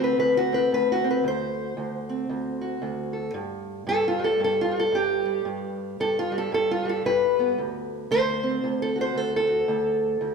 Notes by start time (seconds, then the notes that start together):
Already playing: D2 D3
0.00 C4 B4
0.18 D2 B4
0.37 F#4
0.53 C4 B4
0.72 D2 B4
0.92 F#4
1.04 C4
1.11 B4
1.24 D2
1.28 C5
1.77 D2
2.09 C4
2.29 D2
2.61 F#4
2.82 D2
3.13 A4
3.34 G2
3.87 G2 A4
4.08 F4
4.19 G3
4.24 A4
4.40 G2
4.44 A4
4.61 F4
4.71 G3
4.79 A4
4.92 G2 G4
5.25 G3
5.45 G2
6.00 G2 A4
6.19 F4
6.32 G3
6.38 A4
6.52 G2 A4
6.71 F4
6.85 G3
6.89 A4
7.05 G2 B4
7.39 B3
7.58 D2
8.11 D2 C5
8.43 C4
8.64 D2
8.82 A4
8.96 F#4
9.01 C5
9.15 D2 A4
9.36 A4
9.47 F#4
9.68 D2
10.21 D2